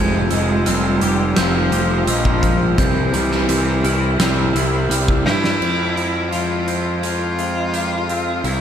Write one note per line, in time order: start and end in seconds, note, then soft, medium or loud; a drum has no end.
0.00 0.28 F1 medium
0.00 1.73 F3 medium
0.00 0.29 G#3 loud
0.00 0.66 C4 medium
0.00 2.76 F4 medium
0.00 5.57 C5 medium
0.00 0.31 G#6 medium
0.31 0.63 F1 medium
0.31 0.68 G#3 medium
0.31 2.07 G#3 medium
0.31 0.66 E6 medium
0.31 closed hi-hat medium
0.66 0.99 F1 medium
0.66 1.39 G3 medium
0.66 1.37 C4 medium
0.66 1.37 F6 medium
0.66 closed hi-hat medium
1.01 1.34 F1 medium
1.01 1.72 G4 medium
1.01 closed hi-hat medium
1.36 1.69 F1 medium
1.36 2.07 F3 medium
1.36 3.49 C4 medium
1.36 2.08 G6 medium
1.36 snare loud
1.36 closed hi-hat medium
1.72 2.05 F1 medium
1.72 3.84 G4 medium
1.72 closed hi-hat medium
2.07 2.74 A#1 medium
2.07 2.74 F3 medium
2.07 2.79 G#3 medium
2.07 2.43 E6 medium
2.07 closed hi-hat medium
2.25 kick medium
2.43 2.79 F3 medium
2.43 2.78 F6 medium
2.43 kick medium
2.43 closed hi-hat medium
2.78 3.11 C2 medium
2.78 4.55 C3 medium
2.78 4.87 E3 medium
2.78 5.59 E4 medium
2.78 5.59 G4 medium
2.78 3.48 G6 medium
2.78 kick loud
2.78 closed hi-hat medium
3.13 3.46 C2 medium
3.13 4.89 G3 medium
3.13 closed hi-hat medium
3.31 snare soft
3.48 3.81 C2 medium
3.48 4.18 C4 medium
3.48 3.84 G6 medium
3.48 closed hi-hat medium
3.83 4.16 C2 medium
3.83 4.54 E4 medium
3.83 4.20 F6 medium
3.83 closed hi-hat medium
4.19 4.52 C2 medium
4.19 5.61 C4 medium
4.19 4.91 E6 medium
4.19 snare loud
4.19 closed hi-hat loud
4.54 4.87 C2 medium
4.54 5.61 E4 medium
4.54 closed hi-hat medium
4.90 5.22 C2 medium
4.90 5.61 G3 medium
4.90 5.26 F6 medium
4.90 closed hi-hat medium
5.08 kick medium
5.25 5.58 G2 medium
5.25 5.60 E3 medium
5.25 6.28 E4 loud
5.25 5.61 G6 medium
5.25 snare medium
5.44 snare medium
5.61 8.40 F2 medium
5.61 6.31 F3 medium
5.61 8.42 F3 soft
5.61 8.42 G#3 soft
5.61 8.61 C5 soft
5.61 5.97 F6 medium
5.61 crash medium
5.97 6.68 G#6 medium
5.97 closed hi-hat soft
6.32 7.01 F3 soft
6.32 6.99 F4 medium
6.32 closed hi-hat medium
6.67 8.08 C4 soft
6.67 7.03 G6 soft
6.67 closed hi-hat soft
7.02 8.45 F3 medium
7.02 8.47 F4 medium
7.02 7.74 G#6 medium
7.02 closed hi-hat medium
7.38 8.45 G#3 soft
7.38 closed hi-hat soft
7.74 8.61 G4 medium
7.74 8.08 F6 soft
7.74 closed hi-hat medium
8.09 8.61 C4 soft
8.09 8.45 F6 medium
8.09 closed hi-hat soft
8.44 8.61 C2 medium
8.44 8.61 C3 medium
8.44 8.61 E4 medium
8.44 8.61 G4 soft
8.44 8.61 E6 medium
8.44 closed hi-hat medium